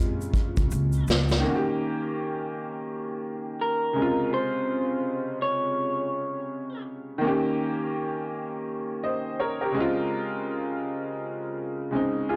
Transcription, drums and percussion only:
0.00 shaker
0.21 shaker
0.33 kick, closed hi-hat, shaker
0.57 kick, closed hi-hat, shaker
0.71 shaker
0.92 shaker
1.07 snare, shaker
1.29 snare, shaker

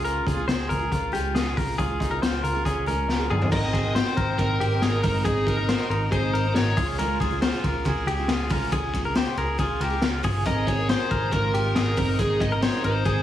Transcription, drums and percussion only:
0.05 closed hi-hat
0.27 kick, closed hi-hat
0.48 snare, closed hi-hat
0.70 kick, closed hi-hat
0.92 kick, closed hi-hat
1.14 closed hi-hat
1.35 snare, closed hi-hat
1.57 kick, open hi-hat
1.79 kick, closed hi-hat
2.00 kick, closed hi-hat
2.23 snare, closed hi-hat
2.44 closed hi-hat
2.65 kick, closed hi-hat
2.88 closed hi-hat
3.09 snare
3.31 mid tom
3.42 floor tom
3.52 kick, crash
3.73 kick, ride
3.96 snare, ride
4.17 kick, ride
4.39 kick, ride
4.61 ride
4.82 snare, ride
5.04 kick, open hi-hat, ride
5.25 kick, hi-hat pedal, ride
5.47 kick, ride
5.69 snare, ride
5.91 ride
6.12 kick, ride
6.35 ride
6.55 snare, ride
6.77 kick, open hi-hat, ride
6.99 hi-hat pedal, ride
7.20 kick, ride
7.42 snare, ride
7.64 kick, ride
7.85 kick, ride
8.08 ride
8.28 snare, ride
8.50 kick, open hi-hat, ride
8.72 kick, hi-hat pedal, ride
8.94 kick, ride
9.15 snare, ride
9.37 ride
9.59 kick, ride
9.81 ride
10.01 snare, ride
10.24 kick, open hi-hat, ride
10.46 kick, hi-hat pedal, ride
10.67 kick, ride
10.89 snare, ride
11.11 kick, ride
11.32 kick, ride
11.54 ride
11.75 snare, ride
11.97 kick, open hi-hat, ride
12.19 kick, hi-hat pedal, ride
12.40 kick, ride
12.62 snare, ride
12.84 ride
13.05 kick, ride

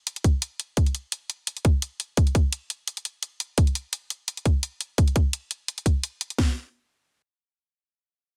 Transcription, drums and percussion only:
0.07 closed hi-hat
0.16 closed hi-hat
0.24 kick, closed hi-hat
0.42 closed hi-hat
0.60 closed hi-hat
0.77 kick, closed hi-hat
0.86 closed hi-hat
0.95 closed hi-hat
1.12 closed hi-hat
1.30 closed hi-hat
1.47 closed hi-hat
1.57 closed hi-hat
1.65 kick, closed hi-hat
1.82 closed hi-hat
2.00 closed hi-hat
2.17 kick, closed hi-hat
2.27 closed hi-hat
2.35 kick, closed hi-hat
2.53 closed hi-hat
2.70 closed hi-hat
2.88 closed hi-hat
2.97 closed hi-hat
3.05 closed hi-hat
3.23 closed hi-hat
3.40 closed hi-hat
3.58 kick, closed hi-hat
3.67 closed hi-hat
3.75 closed hi-hat
3.93 closed hi-hat
4.10 closed hi-hat
4.28 closed hi-hat
4.37 closed hi-hat
4.46 kick, closed hi-hat
4.63 closed hi-hat
4.81 closed hi-hat
4.98 kick, closed hi-hat
5.08 closed hi-hat
5.16 kick, closed hi-hat
5.33 closed hi-hat
5.51 closed hi-hat
5.68 closed hi-hat
5.78 closed hi-hat
5.86 kick, closed hi-hat
6.04 closed hi-hat
6.21 closed hi-hat
6.30 closed hi-hat
6.38 kick, snare, open hi-hat

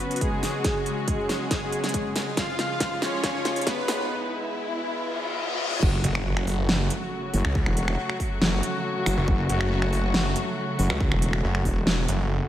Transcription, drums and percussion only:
0.11 closed hi-hat
0.16 closed hi-hat
0.21 kick, closed hi-hat
0.43 snare, open hi-hat
0.64 kick, snare, closed hi-hat
0.86 closed hi-hat
1.08 kick, closed hi-hat
1.29 snare, open hi-hat
1.51 kick, snare, closed hi-hat
1.72 closed hi-hat
1.84 snare, closed hi-hat
1.89 closed hi-hat
1.94 kick, closed hi-hat
2.16 snare, open hi-hat
2.37 kick, snare, closed hi-hat
2.59 snare, closed hi-hat
2.80 kick, snare, closed hi-hat
3.02 snare, open hi-hat
3.24 kick, snare, closed hi-hat
3.45 snare, closed hi-hat
3.56 closed hi-hat
3.61 closed hi-hat
3.67 kick, snare, closed hi-hat
3.88 snare, open hi-hat
5.82 kick, crash
6.04 closed hi-hat
6.15 finger snap
6.37 finger snap
6.47 open hi-hat
6.69 snare
6.90 closed hi-hat
7.34 open hi-hat
7.45 finger snap
7.55 kick
7.66 finger snap
7.77 closed hi-hat
7.88 finger snap
8.10 finger snap
8.20 kick, open hi-hat
8.42 snare
8.63 closed hi-hat
9.06 finger snap, open hi-hat
9.28 kick
9.49 closed hi-hat
9.61 finger snap
9.82 finger snap
9.93 open hi-hat
10.14 snare
10.36 closed hi-hat
10.79 open hi-hat
10.90 finger snap
11.01 kick
11.12 finger snap
11.22 closed hi-hat
11.33 finger snap
11.55 finger snap
11.65 kick, open hi-hat
11.87 snare
12.08 closed hi-hat

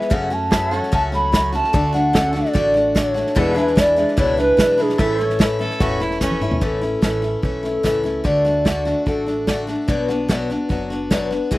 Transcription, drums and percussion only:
0.01 snare
0.11 kick, snare
0.31 snare
0.52 kick, snare, hi-hat pedal
0.73 snare
0.83 snare
0.93 kick, snare
1.13 snare
1.33 kick, snare, hi-hat pedal
1.54 snare
1.64 snare
1.74 kick, snare
1.95 snare
2.15 kick, snare, hi-hat pedal
2.35 snare
2.45 snare
2.55 kick, snare
2.76 snare
2.96 kick, snare, hi-hat pedal
3.16 snare
3.26 snare
3.36 kick, snare
3.57 snare
3.67 snare
3.77 kick, snare, hi-hat pedal
3.98 snare
4.08 snare
4.17 kick, snare
4.38 snare
4.59 kick, snare, hi-hat pedal
4.79 snare
4.89 snare
4.99 kick, snare
5.20 snare
5.30 snare
5.40 kick, snare, hi-hat pedal
5.60 snare
5.70 snare
5.80 kick, snare
6.01 snare
6.11 snare
6.21 kick, snare, hi-hat pedal
6.31 high tom
6.41 mid tom
6.51 floor tom
6.61 kick, snare
6.82 snare
7.02 kick, snare, hi-hat pedal
7.23 snare
7.43 kick, snare
7.64 snare
7.84 kick, snare, hi-hat pedal
8.05 snare
8.25 kick, snare
8.45 snare
8.66 kick, snare, hi-hat pedal
8.86 snare
9.06 kick, snare
9.27 snare
9.47 kick, snare, hi-hat pedal
9.68 snare
9.88 kick, snare
10.09 snare
10.29 kick, snare, hi-hat pedal
10.50 snare
10.70 kick, snare
10.91 snare
11.11 kick, snare, hi-hat pedal
11.31 snare
11.51 kick, snare

